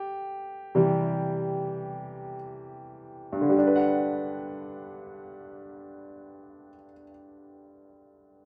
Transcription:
0.00 2.34 G4 medium
0.75 3.50 C3 soft
0.75 3.50 E3 soft
0.75 3.48 G3 soft
3.33 6.67 G2 soft
3.41 6.76 D3 soft
3.49 6.84 G3 soft
3.58 6.93 D4 soft
3.67 7.01 B4 soft
3.76 7.10 F#5 soft

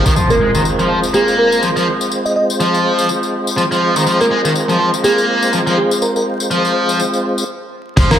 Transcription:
0.00 0.12 G#3 medium
0.00 0.12 C4 medium
0.00 0.12 G4 medium
0.00 0.15 A#4 medium
0.06 0.12 D#3 medium
0.06 kick medium
0.06 tambourine medium
0.16 0.29 F3 medium
0.16 7.44 G#3 medium
0.16 7.44 C4 medium
0.16 7.44 F4 medium
0.16 7.44 C5 medium
0.16 tambourine soft
0.16 impact medium
0.30 0.34 A#3 medium
0.30 0.79 A#4 medium
0.30 tambourine soft
0.41 0.49 G#3 medium
0.55 0.61 D#3 medium
0.55 tambourine medium
0.65 tambourine soft
0.79 0.88 F3 medium
0.79 tambourine soft
0.89 0.98 F3 medium
1.03 tambourine medium
1.14 1.62 A#3 medium
1.14 1.33 G#4 medium
1.14 tambourine soft
1.28 tambourine soft
1.38 1.58 A#4 medium
1.52 tambourine medium
1.62 1.68 F3 medium
1.62 tambourine soft
1.76 1.86 F3 medium
1.76 tambourine soft
2.01 tambourine medium
2.12 tambourine medium
2.25 2.32 D#5 medium
2.25 tambourine soft
2.36 2.45 D#5 medium
2.50 tambourine medium
2.60 3.08 F3 medium
2.60 tambourine soft
2.74 tambourine soft
2.99 tambourine medium
3.09 tambourine soft
3.23 tambourine soft
3.47 tambourine medium
3.57 3.63 F3 medium
3.57 tambourine soft
3.71 3.95 F3 medium
3.71 tambourine soft
3.96 4.03 D#3 medium
3.96 tambourine medium
4.06 4.19 F3 loud
4.06 tambourine medium
4.20 4.24 A#3 medium
4.20 4.69 A#4 medium
4.20 tambourine soft
4.31 4.40 G#3 medium
4.45 4.51 D#3 medium
4.45 tambourine medium
4.55 tambourine soft
4.69 4.78 F3 medium
4.69 tambourine soft
4.80 4.88 F3 medium
4.94 tambourine medium
5.04 5.52 A#3 medium
5.04 5.24 G#4 medium
5.04 tambourine soft
5.18 tambourine soft
5.43 tambourine medium
5.53 5.58 F3 medium
5.53 tambourine soft
5.67 5.77 F3 loud
5.67 tambourine soft
5.78 5.97 G#4 medium
5.91 tambourine medium
6.02 6.11 A#4 medium
6.02 tambourine soft
6.16 6.22 A#4 medium
6.16 tambourine soft
6.40 tambourine medium
6.51 6.98 F3 medium
6.51 tambourine soft
6.65 tambourine soft
6.89 tambourine medium
7.00 tambourine soft
7.14 tambourine soft
7.38 tambourine medium
7.97 8.07 F1 loud
7.97 8.09 F3 loud
7.97 8.19 G#3 medium
7.97 8.19 C4 medium
7.97 8.19 F4 medium
7.97 8.19 C5 medium
7.97 kick loud
7.97 ride medium
7.97 tambourine medium
7.97 impact medium
8.11 8.15 A#3 medium
8.11 8.19 A#4 medium
8.11 snare medium
8.11 tambourine soft

